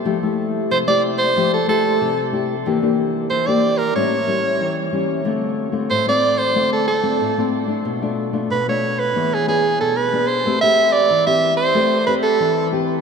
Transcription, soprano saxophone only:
\new Staff \with { instrumentName = "Soprano saxophone" } { \time 4/4 \key a \minor \tempo 4 = 92 r4 c''16 d''8 c''8 a'16 a'4 r8 | r4 c''16 d''8 bes'16 cis''4. r8 | r4 c''16 d''8 c''8 a'16 a'4 r8 | r4 b'16 cis''8 b'8 gis'16 gis'8 a'16 b'8 c''16~ |
c''16 e''8 d''8 e''8 c''8. b'16 a'8. r8 | }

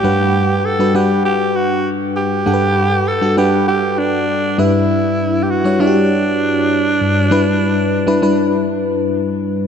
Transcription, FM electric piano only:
<<
  \new Staff \with { instrumentName = "FM electric piano" } { \time 4/4 \key e \dorian \tempo 4 = 99 <g d' b' fis''>8. r8 <g d' fis' b'>16 <g d' b' fis''>4~ <g d' b' fis''>16 r4 r16 | <g d' a' b' fis''>8. r8 <g d' fis' a'>16 <g d' b' fis''>4~ <g d' b' fis''>16 r8. <g d' e' b'>8~ | <g d' e' b'>4 r16 <g d' e' cis''>16 <g d' e' fis' g'>4~ <g d' e' fis' g'>16 r4 r16 | <g d' e' b'>8. r8 <g d' e' b'>16 <g d' e' b'>4~ <g d' e' b'>16 r4 r16 | }
  \new Staff \with { instrumentName = "FM electric piano" } { \clef bass \time 4/4 \key e \dorian g,1 | g,2.~ g,8 g,8~ | g,2.~ g,8 g,8~ | g,2.~ g,8 r8 | }
>>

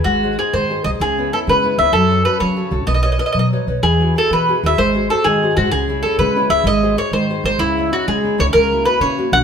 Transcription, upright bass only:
\new Staff \with { instrumentName = "Upright bass" } { \clef bass \time 6/8 \key gis \phrygian \tempo 4. = 127 gis,,4. gis,4 bis,,8 | cis,4. cis4 cis,8 | fis,4. fis4 c,8 | b,,4. b,4 b,,8 |
e,4. e4 dis,8 | gis,,4. gis,4 gis,8 | cis,4. cis4 cis,8 | gis,,4. gis,4 gis,,8 |
cis,4. cis4 cis,8 | cis,4. cis4 ais,,8 | }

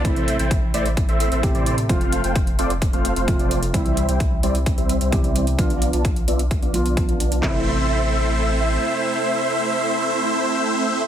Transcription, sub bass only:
\new Staff \with { instrumentName = "Sub bass" } { \clef bass \time 4/4 \key a \minor \tempo 4 = 130 a,,8. a,,8. a,,8. a,,8 a,,8 a,8. | f,,8. f,,8. f,,8. f,,8 f,,8 f,,8. | c,8. c,8. c,8. c,8 c,8 c,8. | b,,8. b,,8. b,,8. b,,16 b,,8. b,,16 b,,8 |
a,,2. r4 | r1 | }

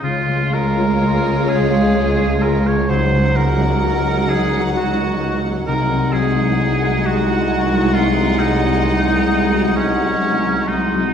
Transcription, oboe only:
\new Staff \with { instrumentName = "Oboe" } { \time 12/8 \key des \major \tempo 4. = 43 f'8 bes'4 aes'4 bes'16 des''16 c''8 bes'4 aes'8 ges'8. r16 | bes'8 aes'4 ges'4 f'8 ees'4. des'4 ees'8 | }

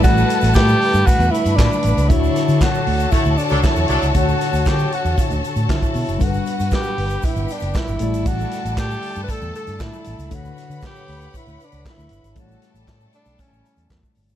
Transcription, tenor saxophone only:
\new Staff \with { instrumentName = "Tenor saxophone" } { \time 4/4 \key d \major \tempo 4 = 117 fis'4 g'4 fis'8 e'8 d'4 | e'4 fis'4 e'8 d'8 e'4 | fis'4 g'8 fis'4 r8 e'4 | fis'4 g'4 e'8 d'8 e'4 |
fis'4 g'8.~ g'32 b'32 a'8 a'8 e'4 | fis'4 g'4 e'8 d'8 e'4 | fis'8. r8. d'8 cis'4 r4 | }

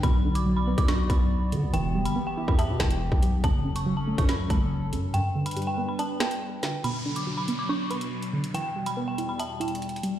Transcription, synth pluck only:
\new Staff \with { instrumentName = "Synth pluck" } { \clef bass \time 4/4 \key b \minor \tempo 4 = 141 b,8 d8 fis8 b8 d'8 b4 d8 | e8 g8 b8 e'8 e''8 e'4 g8 | fis,8 cis8 fis8 a8 cis'8 a4 cis8 | g,8 d8 g8 b8 d'8 b4 d8 |
b,8 d8 fis8 b8 d'8 b4 d8 | e8 g8 b8 e'8 e''8 e'4 g8 | }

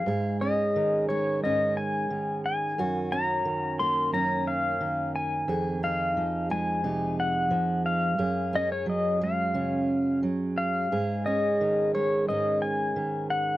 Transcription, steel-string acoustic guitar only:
\new Staff \with { instrumentName = "Steel-string acoustic guitar" } { \clef bass \time 4/4 \key aes \mixolydian \tempo 4 = 88 << { <aes aes'>8 des'4 aes8 des'2 | ges'8 des'4 bes8 des'2 | aes'8 ees'4 aes8 ees'2 | aes'8 des'4 aes8 des'2 |
aes'8 des'4 aes8 des'2 | } \\ { aes,4 ees4 aes,4 ees4 | ges,4 ees4 ges,4 ees4 | f,4 f4 c4 f4 | ges,4 ges4 des4 ges4 |
aes,4 ees4 aes,4 ees4 | } >> }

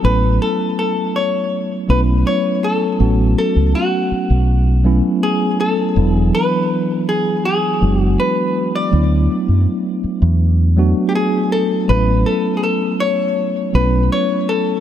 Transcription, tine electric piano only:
\new Staff \with { instrumentName = "Tine electric piano" } { \time 4/4 \key a \major \tempo 4 = 81 <fis a b cis' e'>2 r8 <fis a b cis' e'>4. | <fis a b cis' fis'>2 r8 <fis a b cis' e'>4. | <e fis b d' e'>2 r8 <fis gis b d' fis'>4. | <fis a b d' e'>2 r8 <fis a b d' fis'>4. |
<fis a b cis' e'>2 r8 <fis a b cis' e'>4. | }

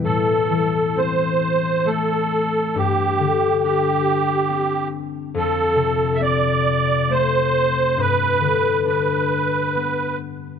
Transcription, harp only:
\new Staff \with { instrumentName = "Harp" } { \clef bass \time 3/4 \key a \minor \tempo 4 = 68 a,8 e8 c'4 a4 | g,8 d8 d'4 c'4 | f,8 c8 c'4 a4 | g,8 d8 d'4 b4 | }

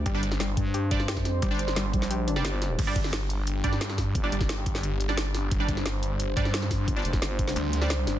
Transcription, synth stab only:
\new Staff \with { instrumentName = "Synth stab" } { \time 4/4 \key c \minor \tempo 4 = 176 <g d' d''>16 <g d' d''>16 r2 <g d' d''>16 r4 r16 | r16 <g d' d''>16 r2 r16 <g d' d''>4~ <g d' d''>16 | r16 <g d' d''>16 r2 <g d' d''>16 r4 r16 | r16 <g d' d''>16 r2 r16 <g d' d''>4~ <g d' d''>16~ |
<g d' d''>16 <g d' d''>16 r2 <g d' d''>16 r4 r16 | r16 <g d' d''>16 r2 r16 <g d' d''>16 r4 | }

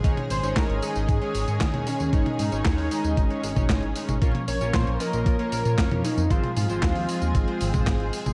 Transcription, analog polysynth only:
\new Staff \with { instrumentName = "Analog polysynth" } { \time 4/4 \key aes \mixolydian \tempo 4 = 115 <aes des' ees' des''>16 r8 <aes des' ees' des''>8. <aes des' ees' ees''>8. <aes des' ees' des''>8 <aes des' ees' des''>8 <aes des' ees' des''>8 r16 | <aes des' ees' des''>16 r8 <aes des' ees' des''>8. <aes des' ees' ees''>8. <aes des' ees' des''>8 <aes des' ees' des''>8 r16 <aes des' ees' des''>16 r16 | <bes des' f' des''>16 r8 <bes des' f' des''>8. <bes des' f' ees''>8. <bes des' f' des''>8 <bes des' f' des''>8 <bes des' f' des''>8 r16 | <aes c' f' c''>16 r8 <aes c' f' c''>8. <aes c' f' ees''>8. <aes c' f' c''>8 <aes c' f' c''>8 <aes c' f' c''>8 r16 | }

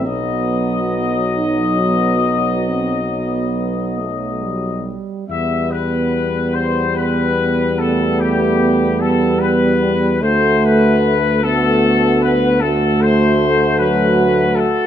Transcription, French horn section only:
\new Staff \with { instrumentName = "French horn section" } { \time 12/8 \key e \minor \tempo 4. = 48 b4. dis'8 b4 c'8 b4 a8 g4 | b1. | fis'4. fis'4. fis'2. | }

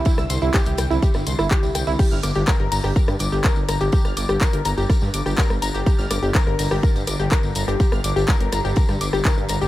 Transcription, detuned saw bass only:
\new Staff \with { instrumentName = "Detuned saw bass" } { \clef bass \time 4/4 \key g \dorian \tempo 4 = 124 r16 c,16 c,16 c,16 r16 c,16 c,16 c,16 r16 g,,16 c,16 g,,16 r16 c,16 c,16 c,16 | r16 g,,16 g,,16 g,,16 r16 g,,16 g,,16 g,,16 r16 g,16 g,,16 g,,16 r16 g,,16 g,,16 g,,16 | r16 g,,16 g,,16 g,,16 r16 g,,16 g,,16 g,,16 r16 g,16 g,,16 g,,16 r16 g,,16 g,,16 g,,16 | r16 g,,16 g,,16 g,,16 r16 g,,16 g,,16 g,,16 r16 g,16 g,,16 g,,16 r16 g,,16 g,,16 g,,16 |
r16 g,,16 g,,16 g,,16 r16 g,,16 g,,16 g,,16 r16 g,16 g,,16 g,,16 r16 g,16 g,,16 g,,16 | }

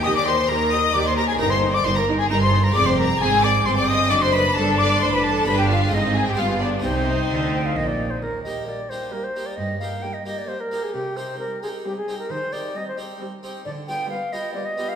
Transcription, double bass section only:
\new Staff \with { instrumentName = "Double bass section" } { \clef bass \time 3/4 \key c \minor \tempo 4 = 133 ees,4 ees,4 ees,4 | g,,4 g,,4 g,,4 | f,,4 aes,,4 g,,4 | fis,,4 g,,4 a,,4 |
g,,4 aes,,4 g,,4 | c,4 d,4 bes,,4 | \key ees \major r2. | r2. |
r2. | r2. | \key g \phrygian r2. | }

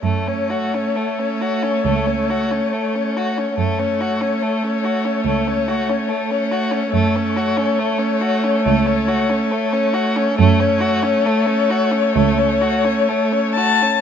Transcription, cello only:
\new Staff \with { instrumentName = "Cello" } { \clef bass \time 4/4 \key fis \minor \tempo 4 = 69 fis,4 r4 cis,4 r4 | fis,4 r4 cis,4 r4 | fis,4 r4 cis,4 r4 | fis,4 r4 cis,4 r4 | }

